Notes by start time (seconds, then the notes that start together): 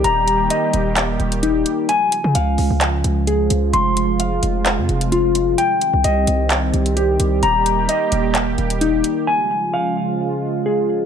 Already playing: D#3 G3 G4
0.04 D#1 A#3 A#5, closed hi-hat
0.28 closed hi-hat
0.50 D#5, closed hi-hat
0.73 D#1, closed hi-hat
0.96 clap, closed hi-hat
1.20 D#1, closed hi-hat
1.32 closed hi-hat
1.43 D#4, closed hi-hat
1.66 closed hi-hat
1.89 C#3 F3 G#3 F4 G#5, closed hi-hat
2.12 closed hi-hat
2.24 C#3
2.35 C#2 F5, closed hi-hat
2.58 C#2, open hi-hat
2.70 C#2
2.81 clap, closed hi-hat
3.04 C#2, closed hi-hat
3.27 G#4, closed hi-hat
3.50 C#2, closed hi-hat
3.73 F1 C3 C6, closed hi-hat
3.97 closed hi-hat
4.20 F5, closed hi-hat
4.43 F1, closed hi-hat
4.66 clap, closed hi-hat
4.78 F2
4.89 F1, closed hi-hat
5.01 closed hi-hat
5.12 F4, closed hi-hat
5.35 closed hi-hat
5.58 D#3 G3 C4 G4 G5, closed hi-hat
5.81 closed hi-hat
5.93 C2
6.04 C2 D#5, closed hi-hat
6.27 C2, closed hi-hat
6.50 clap, closed hi-hat
6.73 C2, closed hi-hat
6.86 closed hi-hat
6.97 G4, closed hi-hat
7.20 C2, closed hi-hat
7.43 D#1 A#3 A#5, closed hi-hat
7.66 closed hi-hat
7.89 D#5, closed hi-hat
8.12 D#1, closed hi-hat
8.35 clap, closed hi-hat
8.58 D#1, closed hi-hat
8.70 closed hi-hat
8.81 D#4, closed hi-hat
9.04 closed hi-hat
9.27 C#3 F3 G#3 F4 G#5
9.73 F5
10.66 G#4